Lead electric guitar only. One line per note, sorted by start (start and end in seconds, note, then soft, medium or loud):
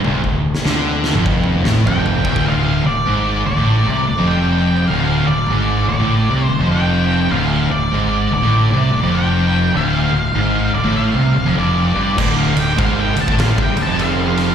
1.87 2.49 G5 medium
2.46 2.86 F5 loud
2.87 3.45 D5 medium
3.46 4.32 D5 medium
4.27 4.91 G5 medium
4.88 5.24 F5 medium
5.27 5.87 D5 medium
5.89 6.46 D5 medium
6.46 6.68 C5 medium
6.72 7.29 G5 medium
7.31 7.71 F5 loud
7.71 8.33 D5 medium
8.34 9.18 D5 medium
9.15 9.71 G5 loud
9.77 10.74 F5 loud
10.75 10.96 D5 medium
10.96 11.53 F5 loud
11.58 12.17 D5 medium
12.18 12.38 D5 loud
12.38 12.57 F5 loud
12.59 12.79 G5 medium
12.79 12.99 F5 loud
12.99 13.19 G5 loud
13.21 13.40 A5 medium
13.40 13.60 F5 loud
13.62 13.81 G5 loud
13.82 14.01 A5 loud
14.01 14.55 F5 loud